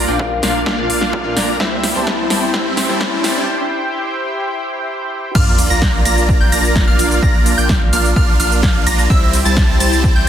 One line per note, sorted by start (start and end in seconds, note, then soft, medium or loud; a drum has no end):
0.00 1.56 D4 medium
0.00 1.56 F4 medium
0.00 1.56 A#4 medium
0.00 1.56 F5 medium
0.00 riser medium
0.07 0.41 A#1 loud
0.07 0.40 A#2 medium
0.07 0.40 F3 medium
0.07 0.40 A#3 medium
0.07 0.24 A#3 medium
0.07 0.24 D4 medium
0.07 0.40 D4 medium
0.07 0.24 F4 medium
0.07 0.40 F4 medium
0.07 0.24 D5 medium
0.07 0.24 G5 medium
0.19 kick loud
0.42 0.64 A#1 medium
0.42 0.59 A#2 medium
0.42 0.59 F3 medium
0.42 0.59 A#3 medium
0.42 0.60 A#3 medium
0.42 0.60 D4 medium
0.42 0.59 D4 medium
0.42 0.60 F4 medium
0.42 0.59 F4 loud
0.42 0.60 D5 medium
0.42 0.60 F5 medium
0.42 snare medium
0.42 open hi-hat loud
0.66 0.87 A#1 loud
0.66 0.87 A#3 loud
0.66 0.87 D4 medium
0.66 0.87 F4 medium
0.66 0.87 D5 medium
0.66 0.87 F5 loud
0.66 kick loud
0.66 snare medium
0.77 0.88 A#2 loud
0.77 0.88 F3 medium
0.77 0.88 A#3 medium
0.77 0.88 D4 medium
0.77 0.88 F4 loud
0.90 1.34 A#1 loud
0.90 1.34 A#3 medium
0.90 1.34 D4 medium
0.90 1.34 F4 medium
0.90 1.34 D5 medium
0.90 1.34 F5 medium
0.90 open hi-hat loud
1.01 snare medium
1.13 kick loud
1.24 1.57 A#2 medium
1.24 1.57 F3 medium
1.24 1.57 A#3 medium
1.24 1.57 D4 medium
1.24 1.58 F4 medium
1.37 1.58 A#1 loud
1.37 1.57 A#3 medium
1.37 1.57 D4 medium
1.37 1.57 F4 medium
1.37 1.57 D5 medium
1.37 1.57 A#5 medium
1.37 snare medium
1.37 open hi-hat loud
1.59 1.93 C2 loud
1.59 1.70 E3 medium
1.59 1.70 G3 medium
1.59 1.87 G3 medium
1.59 1.87 C4 medium
1.59 1.70 C4 medium
1.59 5.31 E4 medium
1.59 1.87 E4 medium
1.59 1.70 E4 medium
1.59 5.31 G4 medium
1.59 5.31 C5 medium
1.59 1.87 C5 medium
1.59 1.87 E5 medium
1.59 5.31 G5 medium
1.59 kick loud
1.59 snare medium
1.83 snare medium
1.83 open hi-hat loud
1.95 2.28 C2 loud
1.95 2.27 E3 medium
1.95 2.27 G3 medium
1.95 2.28 G3 medium
1.95 2.28 C4 medium
1.95 2.28 E4 medium
1.95 2.28 C5 medium
1.95 2.28 A5 medium
2.07 kick loud
2.07 snare medium
2.30 2.51 C2 loud
2.30 2.46 E3 medium
2.30 2.46 G3 medium
2.30 2.52 G3 medium
2.30 2.52 C4 medium
2.30 2.47 C4 medium
2.30 2.52 E4 medium
2.30 2.47 E4 medium
2.30 2.52 C5 medium
2.30 2.52 A5 loud
2.30 snare medium
2.30 open hi-hat loud
2.53 2.87 C2 loud
2.53 2.64 E3 medium
2.53 2.81 G3 medium
2.53 2.64 G3 medium
2.53 2.81 C4 medium
2.53 2.64 C4 medium
2.53 2.81 E4 medium
2.53 2.64 E4 medium
2.53 2.81 C5 medium
2.53 2.81 E5 loud
2.53 kick loud
2.53 snare medium
2.77 snare medium
2.77 open hi-hat loud
2.88 3.22 C2 medium
2.88 3.21 E3 medium
2.88 3.21 G3 medium
2.88 3.21 C4 medium
2.88 3.21 E4 medium
2.88 3.22 E4 medium
2.88 3.21 C5 medium
2.88 3.21 A5 medium
3.01 kick loud
3.01 snare medium
3.24 3.45 C2 loud
3.24 3.40 E3 medium
3.24 3.40 G3 medium
3.24 3.46 G3 medium
3.24 3.46 C4 medium
3.24 3.40 C4 medium
3.24 3.46 E4 medium
3.24 3.41 E4 loud
3.24 3.46 C5 medium
3.24 3.46 A5 loud
3.24 snare medium
3.24 open hi-hat loud
5.35 5.68 A#1 loud
5.35 5.62 A#3 medium
5.35 5.62 D4 medium
5.35 9.06 D4 medium
5.35 5.62 F4 medium
5.35 9.06 F4 medium
5.35 9.06 A#4 medium
5.35 5.62 D5 medium
5.35 5.62 F5 loud
5.35 9.06 F5 medium
5.35 5.62 F6 loud
5.35 kick loud
5.35 crash loud
5.35 sub drop medium
5.35 cabasa soft
5.59 open hi-hat loud
5.59 ride medium
5.59 cabasa medium
5.70 6.03 A#1 loud
5.70 6.03 A#3 medium
5.70 6.03 D4 medium
5.70 6.03 F4 medium
5.70 6.03 D5 medium
5.70 6.03 A#5 medium
5.70 6.03 A#6 medium
5.70 cabasa soft
5.82 kick loud
5.82 snare loud
5.82 cabasa soft
6.05 6.38 A#1 loud
6.05 6.38 A#3 loud
6.05 6.38 D4 medium
6.05 6.38 F4 medium
6.05 6.38 D5 medium
6.05 6.38 A#5 loud
6.05 6.38 A#6 loud
6.05 open hi-hat loud
6.05 ride medium
6.05 cabasa medium
6.18 cabasa soft
6.29 kick loud
6.29 cabasa soft
6.40 6.50 A#1 loud
6.40 6.50 A#3 medium
6.40 6.50 D4 medium
6.40 6.50 F4 medium
6.40 6.50 D5 medium
6.40 6.50 G5 medium
6.40 6.51 G6 medium
6.52 6.85 A#1 loud
6.52 6.85 A#3 loud
6.52 6.85 D4 medium
6.52 6.85 F4 medium
6.52 6.85 D5 medium
6.52 6.85 A#5 loud
6.52 6.85 A#6 loud
6.52 open hi-hat loud
6.52 ride medium
6.52 cabasa medium
6.64 cabasa soft
6.76 kick loud
6.76 snare loud
6.76 cabasa soft
6.87 7.20 A#1 medium
6.87 7.20 A#3 medium
6.87 7.20 D4 medium
6.87 7.20 F4 medium
6.87 7.20 D5 medium
6.87 7.20 F5 medium
6.87 7.20 F6 medium
6.99 open hi-hat loud
6.99 ride medium
6.99 cabasa medium
7.11 cabasa soft
7.23 7.55 A#1 loud
7.23 7.55 A#3 medium
7.23 7.55 D4 medium
7.23 7.55 F4 medium
7.23 7.55 D5 medium
7.23 7.55 A#5 medium
7.23 7.55 A#6 medium
7.23 kick loud
7.23 cabasa soft
7.46 open hi-hat loud
7.46 ride medium
7.46 cabasa medium
7.58 7.91 A#1 loud
7.58 7.74 A#3 medium
7.58 7.74 D4 medium
7.58 7.74 F4 medium
7.58 7.74 D5 medium
7.58 7.74 G5 medium
7.58 7.74 G6 medium
7.58 cabasa soft
7.69 kick loud
7.69 snare loud
7.69 cabasa soft
7.93 8.14 A#1 loud
7.93 8.10 A#3 medium
7.93 8.10 D4 medium
7.93 8.10 F4 medium
7.93 8.10 D5 medium
7.93 8.10 F5 medium
7.93 8.10 F6 medium
7.93 open hi-hat loud
7.93 ride medium
7.93 cabasa medium
8.05 cabasa soft
8.16 8.37 A#1 loud
8.16 8.37 A#3 loud
8.16 8.37 D4 medium
8.16 8.37 F4 medium
8.16 8.37 D5 medium
8.16 8.37 F5 loud
8.16 8.37 F6 loud
8.16 kick loud
8.16 cabasa soft
8.40 8.84 A#1 loud
8.40 8.84 A#3 medium
8.40 8.84 D4 medium
8.40 8.84 F4 medium
8.40 8.84 D5 medium
8.40 8.84 F5 medium
8.40 8.84 F6 medium
8.40 open hi-hat loud
8.40 ride medium
8.40 cabasa medium
8.52 cabasa soft
8.63 kick loud
8.63 snare loud
8.63 cabasa soft
8.87 9.08 A#1 loud
8.87 9.07 A#3 medium
8.87 9.07 D4 medium
8.87 9.07 F4 medium
8.87 9.07 D5 medium
8.87 9.07 A#5 medium
8.87 9.07 A#6 medium
8.87 open hi-hat loud
8.87 ride medium
8.87 cabasa medium
8.99 cabasa soft
9.10 9.43 C2 loud
9.10 9.37 G3 medium
9.10 9.37 C4 medium
9.10 9.37 E4 medium
9.10 10.29 E4 medium
9.10 10.29 G4 medium
9.10 9.37 C5 medium
9.10 10.29 C5 medium
9.10 9.37 E5 loud
9.10 10.29 G5 medium
9.10 9.37 E6 loud
9.10 kick loud
9.10 cabasa soft
9.33 open hi-hat loud
9.33 ride medium
9.33 cabasa medium
9.45 9.78 C2 loud
9.45 9.78 G3 medium
9.45 9.78 C4 medium
9.45 9.78 E4 medium
9.45 9.78 C5 medium
9.45 9.78 A5 medium
9.45 9.78 A6 medium
9.45 cabasa soft
9.57 kick loud
9.57 snare loud
9.57 cabasa soft
9.80 10.13 C2 loud
9.80 10.13 G3 loud
9.80 10.13 C4 medium
9.80 10.13 E4 medium
9.80 10.13 C5 medium
9.80 10.13 A5 loud
9.80 10.13 A6 loud
9.80 open hi-hat loud
9.80 ride medium
9.80 cabasa medium
9.93 cabasa soft
10.04 kick loud
10.04 cabasa soft
10.16 10.25 C2 loud
10.16 10.26 G3 medium
10.16 10.26 C4 medium
10.16 10.26 E4 medium
10.16 10.26 C5 medium
10.16 10.26 G5 medium
10.16 10.26 G6 medium